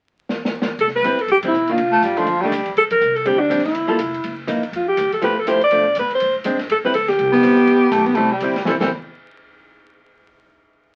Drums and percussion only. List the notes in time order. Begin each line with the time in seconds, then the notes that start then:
0.29 snare
0.45 snare
0.62 snare
0.79 ride
0.87 snare
0.96 snare
1.04 hi-hat pedal, ride
1.19 ride
1.28 ride
1.43 kick, ride
1.53 hi-hat pedal
1.67 ride
1.78 ride
2.03 hi-hat pedal, ride
2.17 ride
2.27 ride
2.52 hi-hat pedal, ride
2.66 kick, ride
2.77 ride
2.91 kick, ride
3.00 hi-hat pedal
3.16 ride
3.26 ride
3.51 hi-hat pedal, ride
3.58 snare
3.65 snare, ride
3.75 ride
3.99 hi-hat pedal, ride
4.14 ride
4.24 ride
4.48 hi-hat pedal, ride
4.63 ride
4.73 ride
4.97 hi-hat pedal, ride
5.12 kick, ride
5.22 ride
5.47 hi-hat pedal, ride
5.61 ride
5.71 ride
5.95 hi-hat pedal, ride
6.11 ride
6.20 ride
6.44 hi-hat pedal, ride
6.59 snare, ride
6.70 ride
6.94 hi-hat pedal, ride
7.08 snare, ride
7.19 ride
7.43 hi-hat pedal, ride
7.57 ride
7.67 ride
7.92 hi-hat pedal, ride
8.06 ride
8.15 ride
8.40 hi-hat pedal, ride
8.56 snare, ride
8.65 kick, snare
8.80 kick, snare, crash